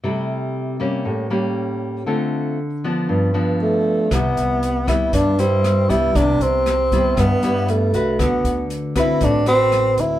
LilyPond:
<<
  \new Staff \with { instrumentName = "Tenor saxophone" } { \time 4/4 \key c \major \tempo 4 = 118 r1 | r2. a4 | b4. e'8 d'8 c'4 e'8 | d'8 c'4. b4 a4 |
b4 r8 e'8 d'8 c'4 e'8 | }
  \new Staff \with { instrumentName = "Nylon-string guitar" } { \time 4/4 \key c \major << { <g a e'>4. <g bes des'>4 <g bes cis'>4. | <a c' f'>4 r8 <f b d'>4 <f b d'>4. | <g b e'>4 r8 <g b e'>4 <g e'>4 <g b e'>8 | <g b e'>4 r8 <g b e'>4 <g b e'>4 <fis' b'>8~ |
<fis' b'>4. <c' fis' b'>4 <c' fis' b'>4. | } \\ { c2 a,2 | d2 g,2 | c2 g,2 | c2 g,2 |
d2 a,2 | } >> }
  \new Staff \with { instrumentName = "Upright bass" } { \clef bass \time 4/4 \key c \major r1 | r1 | c,8 c,4. g,4. c,8 | c,8 c,4. g,4. c,8 |
d,8 d,4. a,,4. d,8 | }
  \new DrumStaff \with { instrumentName = "Drums" } \drummode { \time 4/4 r4 r4 r4 r4 | r4 r4 r4 r4 | <hh bd ss>8 hh8 hh8 <hh bd ss>8 <hh bd>8 hh8 <hh ss>8 hh8 | <hh bd>8 hh8 <hh ss>8 <hh bd>8 <hh bd ss>8 hh8 hh8 hh8 |
<hh bd ss>8 hh8 hh8 <hh bd ss>8 <hh bd>8 hh8 <hh ss>8 hh8 | }
>>